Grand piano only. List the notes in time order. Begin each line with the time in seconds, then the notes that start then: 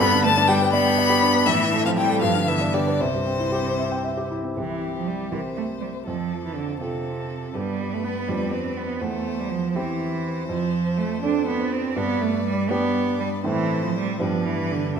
0.00 G2
0.13 D3
0.26 B3
0.37 D4
0.49 G4
0.62 B4
0.73 D5
0.86 G5
0.98 D5
1.10 G4
1.23 D4
1.34 B3
1.47 A2
1.59 E3
1.72 A3
1.85 C4
1.97 E4
2.10 A4
2.22 G2
2.35 D3
2.48 B3
2.61 D4
2.74 G4
2.87 B4
3.00 C2
3.13 G2
3.27 C4
3.39 E4
3.52 G4
3.66 C5
3.79 E5
3.92 G5
4.04 E5
4.17 G4
4.31 E4
4.44 C4
4.57 C2 C4 E4 G4
5.32 C2 C4 G4 A#4
6.07 F2
6.81 C4 F4 A4
7.55 G2 B3 D4 G4
8.29 F2 B3 D4 G4
9.01 E2
9.75 C4 E4 G4
10.49 F2
11.23 C4 D4 A4
11.96 G2
12.70 B3 D4 G4
13.44 A2 A3 C4 E4
14.20 G2 B3 D4 G4
14.96 C2